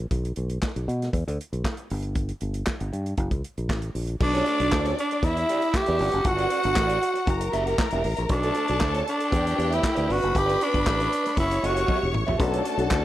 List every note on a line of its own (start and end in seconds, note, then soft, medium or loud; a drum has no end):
0.11 0.31 B1 medium
0.11 kick loud
0.11 closed hi-hat medium
0.25 closed hi-hat soft
0.36 0.57 B1 medium
0.36 closed hi-hat medium
0.49 closed hi-hat soft
0.62 kick medium
0.62 snare loud
0.62 clap medium
0.76 0.85 B1 medium
0.76 closed hi-hat soft
0.88 1.08 B2 medium
0.88 closed hi-hat medium
1.02 snare soft
1.02 closed hi-hat soft
1.13 1.24 E2 loud
1.13 kick loud
1.13 closed hi-hat medium
1.28 1.37 D2 medium
1.28 closed hi-hat medium
1.41 closed hi-hat medium
1.53 1.62 B1 medium
1.53 closed hi-hat soft
1.64 kick loud
1.64 snare loud
1.64 clap medium
1.77 closed hi-hat soft
1.90 2.31 G1 medium
1.90 open hi-hat medium
2.02 closed hi-hat soft
2.15 kick loud
2.15 closed hi-hat medium
2.29 closed hi-hat soft
2.41 2.62 G1 medium
2.41 closed hi-hat medium
2.54 closed hi-hat soft
2.67 kick loud
2.67 snare loud
2.67 clap medium
2.80 2.90 G1 medium
2.80 closed hi-hat soft
2.93 3.13 G2 medium
2.93 closed hi-hat medium
3.06 closed hi-hat soft
3.17 3.29 F#1 loud
3.17 kick loud
3.17 closed hi-hat medium
3.31 3.41 C#2 medium
3.31 kick medium
3.31 closed hi-hat medium
3.44 closed hi-hat medium
3.58 3.69 A#1 medium
3.58 closed hi-hat soft
3.69 3.90 A1 loud
3.69 kick loud
3.69 snare loud
3.69 clap loud
3.82 closed hi-hat soft
3.95 4.15 A#1 medium
3.95 open hi-hat medium
4.07 closed hi-hat soft
4.20 4.41 B1 loud
4.20 5.21 D4 loud
4.20 4.95 D4 loud
4.20 5.21 D5 loud
4.20 muted clean electric guitar stroke medium
4.20 kick loud
4.20 crash loud
4.34 4.45 F#4 medium
4.34 4.45 A4 medium
4.34 4.46 D5 medium
4.34 closed hi-hat soft
4.46 4.61 F#4 medium
4.46 4.60 A4 medium
4.46 4.59 D5 medium
4.46 closed hi-hat medium
4.60 4.69 B1 medium
4.60 muted clean electric guitar stroke medium
4.60 closed hi-hat soft
4.72 4.92 D2 loud
4.72 muted clean electric guitar stroke soft
4.72 kick loud
4.72 snare loud
4.72 clap medium
4.85 4.96 F#4 medium
4.85 4.97 A4 medium
4.85 4.97 D5 medium
4.85 closed hi-hat medium
4.97 5.26 D4 medium
4.97 muted clean electric guitar stroke soft
4.97 closed hi-hat medium
5.11 muted clean electric guitar stroke medium
5.11 closed hi-hat soft
5.23 5.43 E2 loud
5.23 5.99 E4 medium
5.23 5.78 E4 loud
5.23 5.99 E5 loud
5.23 kick loud
5.23 closed hi-hat medium
5.36 muted clean electric guitar stroke soft
5.36 closed hi-hat medium
5.49 5.67 E4 medium
5.49 5.62 G4 medium
5.49 5.62 D5 loud
5.49 closed hi-hat medium
5.62 muted clean electric guitar stroke medium
5.62 closed hi-hat soft
5.74 6.30 G4 loud
5.74 muted clean electric guitar stroke soft
5.74 kick loud
5.74 snare loud
5.74 clap medium
5.86 5.98 E2 medium
5.86 5.99 E4 medium
5.86 5.99 G4 medium
5.86 5.99 D5 medium
5.86 closed hi-hat soft
5.99 6.11 G1 loud
5.99 6.14 F#4 medium
5.99 7.26 F#4 medium
5.99 6.12 B4 medium
5.99 6.11 D5 medium
5.99 7.26 F#5 loud
5.99 open hi-hat medium
6.11 6.23 F#1 medium
6.11 muted clean electric guitar stroke soft
6.11 closed hi-hat soft
6.24 6.45 G1 loud
6.24 muted clean electric guitar stroke soft
6.24 kick loud
6.24 closed hi-hat medium
6.28 7.80 F#4 loud
6.37 6.48 F#4 medium
6.37 6.48 B4 medium
6.37 6.49 D5 medium
6.37 closed hi-hat medium
6.49 6.64 F#4 medium
6.49 6.61 B4 medium
6.49 6.61 D5 medium
6.49 closed hi-hat medium
6.62 6.74 G1 loud
6.62 muted clean electric guitar stroke soft
6.62 closed hi-hat medium
6.75 6.97 A1 loud
6.75 muted clean electric guitar stroke soft
6.75 kick loud
6.75 snare loud
6.75 clap loud
6.87 6.99 F#4 medium
6.87 6.99 B4 medium
6.87 6.99 D5 medium
6.87 closed hi-hat medium
7.00 muted clean electric guitar stroke soft
7.00 closed hi-hat medium
7.14 muted clean electric guitar stroke soft
7.14 closed hi-hat soft
7.26 7.47 F#1 loud
7.26 8.28 A#4 medium
7.26 8.28 A#5 medium
7.26 muted clean electric guitar stroke soft
7.26 kick loud
7.26 closed hi-hat medium
7.41 muted clean electric guitar stroke soft
7.41 closed hi-hat medium
7.52 7.73 F#1 medium
7.52 7.66 G4 medium
7.52 7.66 A#4 medium
7.52 7.66 E5 loud
7.52 closed hi-hat medium
7.66 7.78 G4 medium
7.66 7.78 A#4 medium
7.66 7.79 F#5 medium
7.66 closed hi-hat soft
7.78 muted clean electric guitar stroke soft
7.78 kick loud
7.78 snare loud
7.78 clap loud
7.91 8.02 E1 medium
7.91 8.03 G4 medium
7.91 8.03 A#4 medium
7.91 8.04 E5 medium
7.91 closed hi-hat soft
8.04 8.15 A1 loud
8.04 muted clean electric guitar stroke medium
8.04 open hi-hat medium
8.17 8.28 A#1 medium
8.17 muted clean electric guitar stroke soft
8.17 closed hi-hat soft
8.28 8.50 B1 loud
8.28 9.04 D4 loud
8.28 9.30 A4 medium
8.28 9.31 A5 loud
8.28 muted clean electric guitar stroke soft
8.28 kick loud
8.28 closed hi-hat medium
8.43 8.54 F#4 medium
8.43 8.54 A4 medium
8.43 8.55 D5 medium
8.43 closed hi-hat soft
8.54 8.70 F#4 medium
8.54 8.68 A4 medium
8.54 8.67 D5 medium
8.54 closed hi-hat medium
8.68 8.79 B1 medium
8.68 muted clean electric guitar stroke medium
8.68 closed hi-hat soft
8.80 9.01 D2 loud
8.80 muted clean electric guitar stroke soft
8.80 kick loud
8.80 snare loud
8.80 clap medium
8.94 9.04 F#4 medium
8.94 9.05 A4 medium
8.94 9.05 D5 loud
8.94 closed hi-hat medium
9.05 9.76 D4 loud
9.05 muted clean electric guitar stroke soft
9.05 closed hi-hat medium
9.18 muted clean electric guitar stroke medium
9.18 closed hi-hat medium
9.30 9.53 E2 loud
9.30 10.07 G4 medium
9.30 10.07 G5 loud
9.30 muted clean electric guitar stroke soft
9.30 kick loud
9.30 closed hi-hat medium
9.44 muted clean electric guitar stroke soft
9.44 closed hi-hat medium
9.56 9.78 E2 medium
9.56 9.70 G4 medium
9.56 9.69 B4 loud
9.56 9.69 D5 medium
9.56 closed hi-hat medium
9.70 9.81 G4 medium
9.70 9.81 B4 medium
9.70 9.83 E5 medium
9.70 closed hi-hat soft
9.74 10.13 E4 loud
9.82 muted clean electric guitar stroke soft
9.82 kick loud
9.82 snare loud
9.82 clap loud
9.95 10.07 D2 medium
9.95 10.07 G4 medium
9.95 10.06 B4 medium
9.95 10.07 D5 medium
9.95 closed hi-hat soft
10.07 10.20 G1 loud
10.07 10.22 F#4 medium
10.07 10.20 B4 medium
10.07 11.34 B4 loud
10.07 10.19 D5 medium
10.07 11.34 B5 loud
10.07 open hi-hat medium
10.12 10.39 F#4 loud
10.21 10.32 F#1 medium
10.21 muted clean electric guitar stroke soft
10.21 closed hi-hat soft
10.32 10.55 G1 loud
10.32 muted clean electric guitar stroke medium
10.32 kick loud
10.32 closed hi-hat medium
10.37 10.65 G4 loud
10.46 10.57 F#4 medium
10.46 10.58 B4 medium
10.46 10.58 D5 medium
10.46 closed hi-hat soft
10.58 10.74 F#4 medium
10.58 10.72 B4 medium
10.58 10.71 D5 medium
10.58 closed hi-hat medium
10.64 11.38 D4 loud
10.72 10.83 G1 loud
10.72 muted clean electric guitar stroke soft
10.72 kick medium
10.72 closed hi-hat soft
10.85 11.06 A1 loud
10.85 muted clean electric guitar stroke soft
10.85 kick loud
10.85 snare loud
10.85 clap loud
10.99 11.09 F#4 medium
10.99 11.10 B4 medium
10.99 11.10 D5 medium
10.99 closed hi-hat medium
11.10 muted clean electric guitar stroke soft
11.10 closed hi-hat medium
11.23 muted clean electric guitar stroke soft
11.23 snare soft
11.23 closed hi-hat soft
11.37 11.57 F#1 loud
11.37 11.67 E4 loud
11.37 12.37 C#5 medium
11.37 12.37 C#6 loud
11.37 muted clean electric guitar stroke soft
11.37 kick loud
11.37 closed hi-hat medium
11.51 muted clean electric guitar stroke soft
11.51 closed hi-hat medium
11.63 11.83 F#1 medium
11.63 12.15 F#4 loud
11.63 11.75 G4 medium
11.63 11.75 A#4 medium
11.63 11.75 E5 medium
11.63 closed hi-hat medium
11.75 11.86 G4 medium
11.75 11.86 A#4 medium
11.75 11.88 F#5 medium
11.75 closed hi-hat soft
11.87 12.08 G4 medium
11.87 12.00 A#4 medium
11.87 11.99 E5 medium
11.87 kick loud
11.87 high tom medium
12.00 12.12 E1 medium
12.00 muted clean electric guitar stroke soft
12.12 12.25 A1 loud
12.12 muted clean electric guitar stroke soft
12.12 mid tom loud
12.27 12.37 A#1 medium
12.27 12.38 G4 soft
12.27 12.38 A#4 medium
12.27 12.38 E5 medium
12.27 floor tom loud
12.38 12.59 B1 loud
12.38 12.69 A3 loud
12.38 12.69 C#4 medium
12.38 12.70 D4 loud
12.38 12.70 F#4 loud
12.38 13.05 A4 medium
12.38 13.05 A5 loud
12.38 muted clean electric guitar stroke soft
12.38 kick loud
12.38 closed hi-hat loud
12.52 12.61 F#4 medium
12.52 12.62 A4 medium
12.52 12.63 D5 medium
12.52 closed hi-hat soft
12.62 12.78 F#4 medium
12.62 12.77 A4 medium
12.62 12.76 D5 medium
12.62 closed hi-hat medium
12.77 12.87 B1 loud
12.77 13.05 A3 medium
12.77 13.05 C#4 medium
12.77 13.05 D4 medium
12.77 13.05 F#4 loud
12.77 muted clean electric guitar stroke soft
12.77 closed hi-hat soft
12.89 13.05 D2 loud
12.89 muted clean electric guitar stroke soft
12.89 kick loud
12.89 snare loud
12.89 clap loud